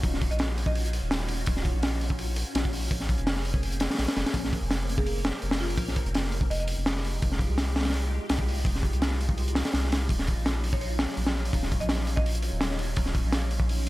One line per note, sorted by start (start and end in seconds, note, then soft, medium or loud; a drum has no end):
0.00 0.29 D#1 loud
0.00 6.46 C#4 medium
0.00 2.87 D#4 medium
0.00 2.87 F4 medium
0.00 2.87 F#4 medium
0.00 kick loud
0.00 open hi-hat medium
0.14 snare soft
0.21 kick loud
0.21 open hi-hat medium
0.31 1.01 A#1 loud
0.31 0.52 D#5 medium
0.31 closed hi-hat soft
0.39 snare loud
0.39 open hi-hat medium
0.49 snare soft
0.58 open hi-hat medium
0.66 0.93 D#5 medium
0.66 kick medium
0.75 open hi-hat medium
0.86 closed hi-hat soft
0.93 open hi-hat medium
1.02 1.46 D#1 medium
1.11 snare loud
1.11 open hi-hat medium
1.20 snare soft
1.28 open hi-hat medium
1.46 1.73 D#1 loud
1.46 kick loud
1.46 open hi-hat medium
1.57 snare medium
1.65 kick loud
1.65 open hi-hat medium
1.74 2.45 A#1 loud
1.83 snare loud
1.83 open hi-hat loud
2.01 open hi-hat medium
2.10 kick medium
2.19 open hi-hat medium
2.36 open hi-hat medium
2.55 2.89 A#1 medium
2.55 snare loud
2.55 open hi-hat loud
2.65 kick medium
2.73 open hi-hat medium
2.91 3.17 A#1 loud
2.91 6.47 A#3 medium
2.91 6.47 C4 medium
2.91 4.33 G#4 medium
2.91 kick loud
2.91 open hi-hat medium
3.00 snare soft
3.09 kick medium
3.09 open hi-hat medium
3.18 3.89 F1 loud
3.18 closed hi-hat soft
3.27 snare loud
3.27 open hi-hat medium
3.36 snare soft
3.45 open hi-hat medium
3.54 kick medium
3.63 open hi-hat medium
3.72 closed hi-hat soft
3.80 snare loud
3.80 open hi-hat medium
3.90 snare medium
3.90 open hi-hat medium
3.95 snare medium
3.95 open hi-hat medium
3.98 4.07 A#1 medium
3.98 snare loud
3.98 open hi-hat medium
4.08 snare loud
4.08 open hi-hat medium
4.16 4.25 F1 medium
4.16 snare loud
4.16 open hi-hat medium
4.26 snare loud
4.26 open hi-hat medium
4.34 4.60 A#1 loud
4.34 6.48 A#4 medium
4.34 kick loud
4.34 open hi-hat medium
4.45 snare medium
4.53 kick medium
4.53 open hi-hat medium
4.62 5.32 F1 loud
4.71 snare loud
4.71 open hi-hat medium
4.89 open hi-hat medium
4.98 5.03 G#4 medium
4.98 kick loud
5.06 5.12 G#4 medium
5.06 open hi-hat medium
5.25 snare loud
5.25 open hi-hat medium
5.34 snare soft
5.42 5.77 F1 medium
5.42 open hi-hat medium
5.51 snare loud
5.51 open hi-hat medium
5.60 5.82 F4 medium
5.60 snare soft
5.70 open hi-hat medium
5.78 6.04 A#1 loud
5.78 kick loud
5.78 open hi-hat medium
5.88 snare soft
5.96 kick medium
5.96 open hi-hat medium
6.06 6.49 F1 loud
6.06 closed hi-hat soft
6.14 snare loud
6.14 open hi-hat medium
6.25 snare soft
6.32 open hi-hat medium
6.41 kick loud
6.50 6.76 F1 loud
6.50 10.06 G#3 medium
6.50 13.89 D#4 medium
6.50 13.89 F4 medium
6.50 10.06 G4 medium
6.50 6.56 D#5 medium
6.50 open hi-hat medium
6.60 6.65 D#5 medium
6.60 closed hi-hat soft
6.68 open hi-hat medium
6.77 7.21 F1 medium
6.86 snare loud
6.86 open hi-hat medium
6.96 snare medium
7.04 open hi-hat medium
7.22 7.48 F1 loud
7.22 kick loud
7.22 open hi-hat medium
7.32 snare soft
7.39 kick loud
7.39 open hi-hat medium
7.49 8.20 C2 loud
7.58 snare loud
7.58 open hi-hat medium
7.76 snare loud
7.76 open hi-hat medium
7.81 snare medium
7.81 open hi-hat medium
7.85 snare medium
7.85 open hi-hat medium
7.90 snare medium
7.90 open hi-hat medium
7.94 open hi-hat medium
8.29 8.64 C2 medium
8.29 snare loud
8.29 open hi-hat medium
8.39 kick loud
8.48 open hi-hat medium
8.65 8.91 F1 loud
8.65 kick loud
8.65 open hi-hat medium
8.75 snare soft
8.83 kick medium
8.83 open hi-hat medium
8.93 9.63 C2 loud
8.93 closed hi-hat soft
9.02 snare loud
9.02 open hi-hat medium
9.11 snare soft
9.21 open hi-hat medium
9.29 kick loud
9.38 open hi-hat medium
9.48 closed hi-hat soft
9.55 snare loud
9.55 open hi-hat medium
9.65 snare loud
9.65 open hi-hat medium
9.74 10.08 C2 loud
9.74 snare loud
9.74 open hi-hat medium
9.84 snare soft
9.92 snare loud
9.92 open hi-hat medium
10.09 10.35 D#1 loud
10.09 13.89 F#3 medium
10.09 13.89 C#4 medium
10.09 kick loud
10.09 open hi-hat medium
10.19 snare medium
10.27 kick medium
10.27 open hi-hat medium
10.37 11.07 A#1 loud
10.46 snare loud
10.46 open hi-hat medium
10.64 open hi-hat medium
10.73 10.78 C#5 medium
10.73 kick loud
10.81 10.87 C#5 medium
10.81 open hi-hat medium
10.99 snare loud
10.99 open hi-hat medium
11.09 snare soft
11.17 11.52 A#1 medium
11.17 open hi-hat medium
11.27 snare loud
11.27 open hi-hat medium
11.35 snare soft
11.45 open hi-hat medium
11.53 11.79 D#1 loud
11.53 kick loud
11.53 open hi-hat loud
11.63 snare soft
11.72 kick loud
11.72 open hi-hat medium
11.80 12.51 A#1 loud
11.80 12.02 D#5 medium
11.80 closed hi-hat soft
11.89 snare loud
11.89 open hi-hat medium
11.98 snare soft
12.07 open hi-hat medium
12.16 12.43 D#5 medium
12.16 kick loud
12.26 open hi-hat loud
12.35 closed hi-hat soft
12.42 open hi-hat medium
12.52 12.95 D#1 medium
12.61 snare loud
12.61 open hi-hat medium
12.71 snare medium
12.79 open hi-hat medium
12.96 13.23 D#1 loud
12.96 kick loud
12.96 open hi-hat medium
13.06 snare medium
13.15 kick medium
13.15 open hi-hat medium
13.24 13.89 A#1 loud
13.32 snare loud
13.32 open hi-hat loud
13.51 open hi-hat medium
13.60 kick medium
13.69 open hi-hat medium